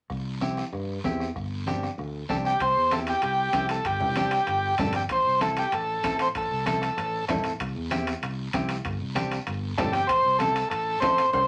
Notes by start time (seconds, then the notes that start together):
0.10 C2, bombo low, bombo rim, high conga, long guiro
0.41 C4 E4 G4, bombo rim, high conga, short guiro
0.57 bombo rim, short guiro
0.73 G2, bombo rim, high conga, long guiro
1.04 E2 C4 E4 G4, bombo low, bombo rim, high conga, short guiro
1.20 bombo rim, short guiro
1.36 G1, bombo low, bombo rim, high conga, long guiro
1.67 C4 D4 G4, bombo rim, high conga, short guiro
1.83 bombo rim, short guiro
1.98 D2, bombo rim, high conga, long guiro
2.29 C2 C4 D4 G4 A4, bombo low, bombo rim, high conga, short guiro
2.45 G4, bombo rim, short guiro
2.60 C2 C5, bombo low, bombo rim, high conga, high timbale, long guiro
2.76 E2
2.91 C4 E4 G4 A4, bombo rim, high conga, high timbale, short guiro
3.07 G4, bombo rim, high timbale, short guiro
3.22 C2 G4, bombo rim, high conga, high timbale, long guiro
3.53 C2 C4 E4 G4, bombo low, bombo rim, high conga, high timbale, short guiro
3.69 A4, bombo rim, high timbale, short guiro
3.85 G1 G4, bombo low, bombo rim, high conga, high timbale, long guiro
4.00 C2, low conga
4.16 C4 D4 G4, bombo rim, high conga, high timbale, short guiro
4.31 bombo rim, high timbale, short guiro
4.47 G1, bombo rim, high conga, high timbale, long guiro
4.78 G1 C4 D4 G4 A4, bombo low, bombo rim, high conga, low conga, high timbale, short guiro
4.93 G4, bombo rim, high timbale, short guiro
5.09 A1 C5, bombo low, bombo rim, high conga, high timbale, long guiro
5.26 C2
5.41 C4 E4 A4, bombo rim, high conga, high timbale, short guiro
5.57 G4, bombo rim, high timbale, short guiro
5.72 A1 A4, bombo rim, high conga, high timbale, long guiro
6.04 A1 C4 E4 A4, bombo low, bombo rim, high conga, high timbale, short guiro
6.19 C5, bombo rim, high timbale, short guiro
6.35 A1 A4, bombo low, bombo rim, high conga, high timbale, long guiro
6.51 C2
6.66 C4 E4 A4, bombo rim, high conga, high timbale, short guiro
6.82 bombo rim, high timbale, short guiro
6.97 A1, bombo rim, high conga, high timbale, long guiro
7.28 A1 C4 E4 A4, bombo low, bombo rim, high conga, low conga, high timbale, low timbale, short guiro
7.44 bombo rim, high timbale, short guiro
7.60 C2, bombo low, bombo rim, high conga, high timbale, long guiro
7.75 E2
7.91 C4 E4 G4, bombo rim, high conga, high timbale, short guiro
8.07 bombo rim, high timbale, short guiro
8.22 C2, bombo rim, high conga, high timbale, long guiro
8.53 C2 C4 E4 G4, bombo low, bombo rim, high conga, high timbale, short guiro
8.69 bombo rim, high timbale, short guiro
8.85 G1, bombo low, bombo rim, high conga, high timbale, long guiro
9.01 C2
9.15 C4 D4 G4, bombo rim, high conga, high timbale, short guiro
9.32 bombo rim, high timbale, short guiro
9.47 G1, bombo rim, high conga, high timbale, long guiro
9.78 G1 C4 D4 G4 A4, bombo low, bombo rim, high conga, low conga, high timbale, low timbale, short guiro
9.92 G4, bombo rim, high timbale, short guiro
10.07 A1 C5, bombo low, bombo rim, high conga, high timbale, long guiro
10.25 C2
10.39 C4 E4 A4, bombo rim, high conga, high timbale, short guiro
10.55 bombo rim, high timbale, short guiro
10.70 A1 A4, bombo rim, high conga, high timbale, long guiro
11.00 A1 C4 E4 A4 C5, bombo low, bombo rim, high conga, high timbale, low timbale, short guiro
11.18 bombo rim, high timbale, short guiro
11.33 C2 C5, bombo low, bombo rim, high conga, high timbale, long guiro